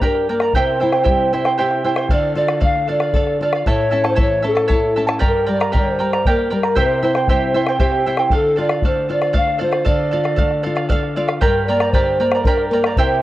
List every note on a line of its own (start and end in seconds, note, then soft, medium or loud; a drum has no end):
0.00 0.51 G2 medium
0.00 0.27 D4 medium
0.00 0.28 G4 medium
0.00 0.28 A#4 medium
0.00 0.27 A#4 medium
0.00 0.28 D5 medium
0.00 0.28 G5 medium
0.00 0.29 A#5 medium
0.00 bombo low medium
0.15 bombo rim soft
0.29 0.54 A#3 soft
0.29 0.42 A#4 medium
0.29 0.57 A#4 medium
0.29 0.42 D5 medium
0.29 0.42 G5 soft
0.29 0.40 A#5 medium
0.40 0.55 A#4 soft
0.40 0.55 D5 soft
0.40 0.55 A#5 soft
0.40 bombo rim medium
0.53 2.07 C3 medium
0.53 0.79 E4 medium
0.53 0.81 G4 medium
0.53 0.80 C5 medium
0.53 1.33 C5 medium
0.53 0.79 E5 medium
0.53 0.80 G5 medium
0.53 bombo low medium
0.80 0.93 E4 medium
0.80 1.07 E4 soft
0.80 0.92 C5 medium
0.80 0.93 E5 medium
0.80 0.91 G5 medium
0.92 1.03 E4 soft
0.92 1.04 C5 soft
0.92 1.04 G5 soft
0.92 bombo rim soft
1.03 1.31 E4 medium
1.03 1.31 G4 medium
1.03 1.32 C5 medium
1.03 1.31 E5 medium
1.03 1.32 G5 medium
1.03 bombo low medium
1.08 1.33 G3 soft
1.33 1.58 E4 soft
1.33 1.46 E4 medium
1.33 1.45 C5 medium
1.33 1.46 E5 medium
1.33 1.45 G5 medium
1.45 1.57 E4 soft
1.45 1.57 C5 soft
1.45 1.58 G5 medium
1.45 bombo rim medium
1.58 1.83 E4 medium
1.58 1.84 G4 medium
1.58 1.84 C5 medium
1.58 1.83 E5 medium
1.58 1.85 G5 medium
1.71 bombo rim soft
1.84 2.10 E4 soft
1.84 1.97 E4 medium
1.84 1.96 C5 medium
1.84 1.97 E5 medium
1.84 1.96 G5 medium
1.96 2.10 E4 soft
1.96 2.10 C5 soft
1.96 2.10 G5 soft
1.96 bombo rim medium
2.09 3.63 D3 medium
2.09 2.35 A4 medium
2.09 2.37 D5 medium
2.09 2.35 D5 medium
2.09 2.36 F5 medium
2.09 bombo low medium
2.36 2.61 F4 soft
2.36 2.49 A4 medium
2.36 2.65 D5 medium
2.36 2.49 D5 medium
2.36 2.48 F5 medium
2.49 2.60 D5 soft
2.49 2.60 F5 soft
2.49 bombo rim medium
2.60 2.88 A3 soft
2.60 2.87 A4 medium
2.60 2.88 D5 medium
2.60 2.88 F5 medium
2.60 2.92 F5 medium
2.60 bombo low medium
2.88 3.14 F4 soft
2.88 3.01 A4 medium
2.88 3.02 D5 medium
2.88 3.41 D5 medium
2.88 3.01 F5 medium
3.00 3.16 D5 soft
3.00 3.15 F5 soft
3.00 bombo rim soft
3.14 3.39 A4 medium
3.14 3.41 A4 medium
3.14 3.41 D5 medium
3.14 3.41 F5 medium
3.14 bombo low medium
3.27 bombo rim soft
3.41 3.66 F4 soft
3.41 3.54 A4 soft
3.41 3.55 D5 medium
3.41 3.66 D5 medium
3.41 3.54 F5 medium
3.53 3.67 D5 soft
3.53 3.67 F5 medium
3.53 bombo rim medium
3.66 5.18 A2 medium
3.66 3.90 E4 medium
3.66 3.91 A4 medium
3.66 3.93 C#5 medium
3.66 4.10 C#5 medium
3.66 3.90 E5 medium
3.66 3.91 A5 medium
3.66 bombo low medium
3.91 4.18 C#4 soft
3.91 4.04 E4 medium
3.91 4.03 A4 medium
3.91 4.04 E5 medium
3.91 4.03 A5 medium
4.04 4.15 E4 soft
4.04 4.15 A4 soft
4.04 4.15 A5 soft
4.04 bombo rim medium
4.09 4.23 C5 medium
4.15 4.43 E3 soft
4.15 4.41 E4 medium
4.15 4.43 A4 medium
4.15 4.43 C#5 medium
4.15 4.41 E5 medium
4.15 4.43 A5 medium
4.15 bombo low medium
4.22 4.46 C#5 medium
4.42 4.69 C#4 soft
4.42 4.56 E4 medium
4.42 4.55 A4 medium
4.42 4.56 E5 soft
4.42 4.54 A5 medium
4.47 5.00 A4 medium
4.55 4.67 E4 soft
4.55 4.67 A4 soft
4.55 4.68 A5 soft
4.55 bombo rim medium
4.68 4.95 E4 medium
4.68 4.96 E4 medium
4.68 4.95 A4 medium
4.68 4.95 C#5 medium
4.68 4.95 E5 medium
4.68 4.95 A5 medium
4.68 bombo low medium
4.96 5.22 C#4 soft
4.96 5.07 E4 medium
4.96 5.06 A4 medium
4.96 5.09 E5 soft
4.96 5.06 A5 medium
5.07 5.20 E4 soft
5.07 5.20 A4 soft
5.07 5.21 A5 soft
5.07 bombo rim medium
5.19 6.74 G2 medium
5.19 5.46 G4 medium
5.19 5.46 A#4 medium
5.19 5.46 D5 medium
5.19 5.45 G5 medium
5.19 5.47 A#5 medium
5.19 bombo low medium
5.27 5.53 A#4 medium
5.47 5.73 G3 soft
5.47 5.60 A#4 soft
5.47 5.60 D5 medium
5.47 5.60 G5 medium
5.47 5.59 A#5 medium
5.52 5.76 D5 medium
5.60 5.72 A#4 soft
5.60 5.72 D5 soft
5.60 5.72 A#5 soft
5.60 bombo rim medium
5.72 5.99 D3 soft
5.72 5.99 G4 medium
5.72 5.99 A#4 medium
5.72 5.99 D5 medium
5.72 5.98 G5 medium
5.72 5.99 A#5 medium
5.72 bombo low medium
5.77 6.30 C5 medium
5.99 6.25 G3 soft
5.99 6.13 A#4 soft
5.99 6.13 D5 medium
5.99 6.12 G5 soft
5.99 6.12 A#5 medium
6.13 6.25 A#4 soft
6.13 6.26 D5 soft
6.13 6.26 A#5 medium
6.13 bombo rim medium
6.25 6.51 A#3 soft
6.25 6.52 G4 medium
6.25 6.49 A#4 medium
6.25 6.53 A#4 medium
6.25 6.50 D5 medium
6.25 6.49 G5 medium
6.25 6.50 A#5 medium
6.25 bombo low medium
6.39 bombo rim soft
6.50 6.77 G3 medium
6.50 6.64 A#4 soft
6.50 6.64 D5 medium
6.50 6.64 G5 medium
6.50 6.63 A#5 soft
6.55 6.77 A#4 medium
6.63 6.76 A#4 soft
6.63 6.76 D5 soft
6.63 6.77 A#5 soft
6.63 bombo rim medium
6.75 8.29 C3 medium
6.75 7.03 E4 medium
6.75 7.02 G4 medium
6.75 7.03 C5 medium
6.75 7.01 E5 medium
6.75 7.03 G5 medium
6.75 bombo low medium
6.80 7.52 C5 medium
7.02 7.28 E4 soft
7.02 7.16 E4 medium
7.02 7.16 C5 medium
7.02 7.16 E5 medium
7.02 7.15 G5 medium
7.15 7.28 E4 soft
7.15 7.28 C5 soft
7.15 7.29 G5 soft
7.15 bombo rim medium
7.28 7.54 G3 soft
7.28 7.54 E4 medium
7.28 7.55 G4 medium
7.28 7.54 C5 medium
7.28 7.53 E5 medium
7.28 7.55 G5 medium
7.28 bombo low medium
7.54 7.79 E4 soft
7.54 7.68 E4 medium
7.54 7.68 C5 medium
7.54 7.67 E5 medium
7.54 7.67 G5 medium
7.66 7.78 E4 soft
7.66 7.79 C5 soft
7.66 7.79 G5 medium
7.66 bombo rim medium
7.79 8.06 E4 medium
7.79 8.06 G4 medium
7.79 8.05 G4 medium
7.79 8.06 C5 medium
7.79 8.05 E5 medium
7.79 8.06 G5 medium
7.79 bombo low medium
7.92 bombo rim soft
8.06 8.32 E4 medium
8.06 8.19 E4 medium
8.06 8.18 C5 medium
8.06 8.19 E5 medium
8.06 8.18 G5 medium
8.17 8.31 E4 soft
8.17 8.32 C5 soft
8.17 8.32 G5 medium
8.17 bombo rim medium
8.30 9.83 D3 medium
8.30 8.55 A4 medium
8.30 8.57 A4 medium
8.30 8.56 D5 medium
8.30 8.57 F5 medium
8.30 bombo low medium
8.56 8.84 F4 soft
8.56 8.70 A4 medium
8.56 8.71 D5 medium
8.56 8.69 F5 medium
8.60 8.87 D5 medium
8.69 8.84 D5 soft
8.69 8.84 F5 soft
8.69 bombo rim medium
8.82 9.09 A3 soft
8.82 9.07 A4 medium
8.82 9.11 C5 medium
8.82 9.09 D5 medium
8.82 9.09 F5 medium
8.82 bombo low medium
9.09 9.35 F4 medium
9.09 9.22 A4 soft
9.09 9.21 D5 medium
9.09 9.35 D5 medium
9.09 9.20 F5 medium
9.21 9.32 D5 soft
9.21 9.32 F5 soft
9.21 bombo rim medium
9.33 9.61 A3 medium
9.33 9.57 A4 medium
9.33 9.58 D5 medium
9.33 9.58 F5 medium
9.33 9.63 F5 loud
9.33 bombo low medium
9.47 bombo rim soft
9.58 9.87 F4 soft
9.58 9.73 A4 medium
9.58 9.87 C5 medium
9.58 9.72 D5 medium
9.58 9.70 F5 medium
9.71 9.84 D5 soft
9.71 9.85 F5 medium
9.71 bombo rim medium
9.85 11.39 D3 medium
9.85 10.10 A4 medium
9.85 10.11 D5 medium
9.85 10.87 D5 medium
9.85 10.11 F5 medium
9.85 bombo low medium
10.11 10.39 F4 soft
10.11 10.25 A4 medium
10.11 10.24 D5 medium
10.11 10.22 F5 medium
10.24 10.36 D5 soft
10.24 10.37 F5 soft
10.24 bombo rim soft
10.36 10.65 A3 soft
10.36 10.62 A4 medium
10.36 10.62 D5 medium
10.36 10.63 F5 medium
10.36 bombo low medium
10.51 bombo rim soft
10.63 10.91 F4 medium
10.63 10.77 A4 medium
10.63 10.76 D5 medium
10.63 10.75 F5 medium
10.63 bombo rim soft
10.76 10.89 D5 soft
10.76 10.89 F5 soft
10.76 bombo rim soft
10.89 11.15 A4 medium
10.89 11.17 A4 medium
10.89 11.15 D5 medium
10.89 11.16 F5 medium
10.89 bombo low medium
11.03 bombo rim soft
11.16 11.42 F4 soft
11.16 11.30 A4 medium
11.16 11.28 D5 medium
11.16 11.41 D5 medium
11.16 11.27 F5 medium
11.28 11.41 D5 soft
11.28 11.41 F5 medium
11.28 bombo rim medium
11.41 12.94 G2 medium
11.41 11.68 G4 medium
11.41 11.67 A#4 medium
11.41 11.68 A#4 medium
11.41 11.67 D5 medium
11.41 11.67 G5 medium
11.41 11.68 A#5 medium
11.41 bombo low medium
11.66 11.94 A#3 medium
11.66 11.81 A#4 medium
11.66 11.93 D5 medium
11.66 11.81 D5 medium
11.66 11.81 G5 medium
11.66 11.80 A#5 medium
11.80 11.93 A#4 soft
11.80 11.93 D5 soft
11.80 11.94 A#5 soft
11.80 bombo rim medium
11.92 12.20 D3 soft
11.92 12.20 G4 medium
11.92 12.19 A#4 medium
11.92 12.44 C5 medium
11.92 12.20 D5 medium
11.92 12.19 G5 medium
11.92 12.20 A#5 medium
11.92 bombo low medium
12.20 12.45 A#3 medium
12.20 12.33 A#4 medium
12.20 12.34 D5 medium
12.20 12.33 G5 soft
12.20 12.34 A#5 medium
12.32 12.47 D5 soft
12.32 12.46 A#5 soft
12.32 bombo rim medium
12.36 12.46 A#4 soft
12.43 12.71 D4 medium
12.43 12.68 A#4 medium
12.43 bombo low medium
12.47 12.72 G4 medium
12.47 12.72 A#4 medium
12.47 12.73 D5 medium
12.47 12.72 G5 medium
12.47 12.72 A#5 medium
12.58 bombo rim soft
12.69 12.97 A#3 medium
12.69 12.87 A#4 medium
12.73 12.86 A#4 medium
12.73 12.86 D5 medium
12.73 12.85 G5 medium
12.73 12.85 A#5 medium
12.84 12.98 A#4 soft
12.84 12.99 D5 soft
12.84 12.98 A#5 soft
12.84 bombo rim medium
12.90 12.96 D5 medium
12.95 13.22 C3 medium
12.95 13.22 E4 medium
12.95 13.22 G4 medium
12.95 13.22 C5 medium
12.95 13.22 E5 medium
12.95 bombo low medium
12.99 13.22 G5 medium